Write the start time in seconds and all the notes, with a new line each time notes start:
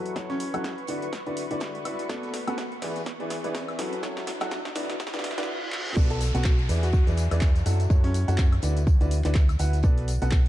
Already playing: F#3 E4 F#4 A4 B4 C#6, riser
0.06 closed hi-hat
0.16 F#3 E4 F#4 A4 C#5, kick, snare, closed hi-hat
0.30 C#4, snare, closed hi-hat
0.40 closed hi-hat, open hi-hat
0.54 F#3 E4 F#4 A4 F#5, closed hi-hat, high woodblock
0.64 kick, snare, closed hi-hat
0.78 closed hi-hat
0.87 D3 E4 F#4 B4 D5, closed hi-hat, open hi-hat
1.02 closed hi-hat
1.13 kick, snare, closed hi-hat
1.27 D3 E4 F#4 B4 D5, closed hi-hat
1.37 closed hi-hat, open hi-hat
1.51 D3 E4 F#4 B4 D5, closed hi-hat
1.60 kick, snare, closed hi-hat
1.75 closed hi-hat
1.85 E4 F#4 B4 D5, closed hi-hat, open hi-hat, high woodblock
1.98 snare, closed hi-hat
2.09 B3 F#4 A4 B4 D5, kick, snare, closed hi-hat
2.23 snare, closed hi-hat
2.34 snare, closed hi-hat, open hi-hat
2.47 B3 F#4 A4 B4 F#5, closed hi-hat, high woodblock
2.58 kick, snare, closed hi-hat
2.72 closed hi-hat
2.82 E3 E4 G#4 B4 D5, snare, open hi-hat
2.96 snare, closed hi-hat
3.06 kick, snare, closed hi-hat
3.20 E3 E4 G#4 B4 D5, closed hi-hat
3.30 snare, closed hi-hat, open hi-hat
3.44 E3 E4 G#4 B4 D5, closed hi-hat
3.55 kick, snare, closed hi-hat, open hi-hat
3.68 snare, closed hi-hat, high woodblock
3.79 F#3 E4 F#4 A4 B4, snare, closed hi-hat, open hi-hat
3.93 closed hi-hat
4.03 F#3 E4 F#4 A4 C#5, kick, snare, closed hi-hat
4.17 snare, closed hi-hat
4.27 snare, closed hi-hat, open hi-hat
4.40 F#3 E4 F#4 A4 F#5, snare, closed hi-hat, high woodblock
4.51 kick, snare, closed hi-hat
4.65 snare, closed hi-hat
4.75 D3 E4 F#4 B4 D5, snare, closed hi-hat, open hi-hat
4.89 snare, closed hi-hat
5.00 kick, snare, closed hi-hat, reverse cymbal
5.07 snare, closed hi-hat
5.13 D3 E4 F#4 B4 D5, snare, closed hi-hat
5.19 snare, closed hi-hat
5.24 snare, closed hi-hat, open hi-hat
5.31 snare
5.38 D3 E4 F#4 B4 D5, snare, closed hi-hat
5.43 snare
5.72 clap
5.96 B1 B3 F#4 A4 B4 D5, kick, closed hi-hat, tambourine, crash, downlifter
6.10 A4, snare, closed hi-hat
6.20 A4, closed hi-hat, open hi-hat, tambourine
6.35 B1 B3 F#4 A4 B4 F#5, closed hi-hat, tambourine
6.44 F#4, kick, snare, clap, closed hi-hat, tambourine
6.59 closed hi-hat
6.69 E2 E3 E4 G#4 B4 D5, open hi-hat, tambourine
6.83 F#4, snare, closed hi-hat, tambourine
6.93 kick, closed hi-hat, tambourine
7.07 E2 E3 E4 G#4 B4 D5, closed hi-hat, tambourine
7.17 closed hi-hat, open hi-hat, tambourine
7.31 E2 E3 E4 G#4 B4 D5, closed hi-hat, tambourine, high woodblock
7.41 kick, snare, clap, closed hi-hat, open hi-hat, tambourine
7.56 snare, closed hi-hat, tambourine
7.66 F#2 F#3 E4 F#4 A4 F#5, closed hi-hat, open hi-hat, tambourine
7.80 closed hi-hat, tambourine
7.90 F#2 F#3 E4 F#4 A4 C#5, kick, closed hi-hat, tambourine
8.04 C#4, snare, open hi-hat
8.14 closed hi-hat, open hi-hat, tambourine
8.28 F#2 F#3 E4 F#4 A4 F#5, closed hi-hat, tambourine
8.38 kick, snare, clap, closed hi-hat, tambourine
8.52 closed hi-hat, high woodblock
8.62 D2 D3 E4 F#4 B4 D5, closed hi-hat, open hi-hat, tambourine
8.77 closed hi-hat, tambourine
8.87 kick, closed hi-hat, tambourine
9.01 D2 D3 E4 F#4 B4 D5, closed hi-hat, tambourine
9.11 closed hi-hat, open hi-hat, tambourine
9.24 D2 D3 E4 F#4 B4 D5, clap, closed hi-hat, tambourine
9.35 kick, snare, clap, closed hi-hat, tambourine
9.49 closed hi-hat, tambourine, high woodblock
9.59 D2 E4 F#4 B4 F#5, closed hi-hat, open hi-hat, tambourine
9.73 snare, closed hi-hat, tambourine
9.83 B1 B3 F#4 A4 B4 D5, kick, closed hi-hat, tambourine
9.97 snare, closed hi-hat
10.08 closed hi-hat, open hi-hat, tambourine
10.22 B1 B3 F#4 A4 B4 F#5, closed hi-hat, tambourine
10.31 kick, snare, clap, closed hi-hat, tambourine